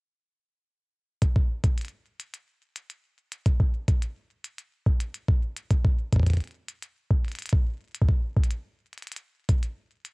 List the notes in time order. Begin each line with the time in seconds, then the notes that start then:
1.22 kick, closed hi-hat
1.36 kick
1.64 kick, closed hi-hat
1.78 closed hi-hat
1.81 closed hi-hat
1.85 closed hi-hat
1.88 closed hi-hat
2.20 closed hi-hat
2.34 closed hi-hat
2.76 closed hi-hat
2.90 closed hi-hat
3.32 closed hi-hat
3.46 kick, closed hi-hat
3.60 kick
3.88 kick, closed hi-hat
4.02 closed hi-hat
4.44 closed hi-hat
4.58 closed hi-hat
4.86 kick
5.00 closed hi-hat
5.14 closed hi-hat
5.28 kick
5.56 closed hi-hat
5.70 kick, closed hi-hat
5.84 kick
6.12 kick, closed hi-hat
6.16 kick
6.20 kick
6.23 kick, closed hi-hat
6.27 kick, closed hi-hat
6.30 kick, closed hi-hat
6.34 kick, closed hi-hat
6.37 kick, closed hi-hat
6.44 closed hi-hat
6.48 closed hi-hat
6.51 closed hi-hat
6.69 closed hi-hat
6.83 closed hi-hat
7.11 kick
7.25 closed hi-hat
7.28 closed hi-hat
7.32 closed hi-hat
7.35 closed hi-hat
7.39 closed hi-hat
7.42 closed hi-hat
7.46 closed hi-hat
7.49 kick, closed hi-hat
7.95 closed hi-hat
8.02 kick
8.09 kick
8.37 kick
8.44 closed hi-hat
8.51 closed hi-hat
8.93 closed hi-hat
8.98 closed hi-hat
9.02 closed hi-hat
9.07 closed hi-hat
9.12 closed hi-hat
9.16 closed hi-hat
9.49 kick, closed hi-hat
9.63 closed hi-hat
10.05 closed hi-hat